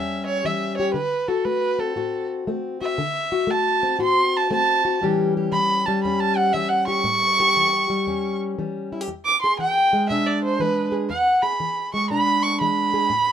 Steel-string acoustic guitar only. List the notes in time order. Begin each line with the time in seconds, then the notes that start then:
Already playing: E2 G3 C#4 G4
0.45 E3 G3
0.80 G4
0.94 D3
1.28 F#4
1.45 A3
1.79 C4
1.96 A2 F#4
2.47 A3 C4
2.82 F#4
2.98 D3
3.32 F#4
3.47 A3
3.83 C4
3.99 A2 F#4
4.51 A3 C4
4.85 F#4
5.01 A2 E3 G3 C#4 G4
5.37 G4
5.52 E3
5.88 G3
6.05 E2 C#4
6.54 E3 G3
6.88 G4
7.04 A2
7.40 G4
7.57 E3
7.90 G3
8.07 E2 C#4
8.59 E3 G3
8.92 E4
9.01 G4
9.08 E2
9.44 G#4
9.59 E3
9.93 G#3
10.10 B2 D4
10.60 E3 G#3
10.92 G#4
11.10 E2
11.43 G#4
11.60 E3
11.94 G#3
12.10 B2 D4
12.61 E3 G#3
12.94 G#4
13.10 A2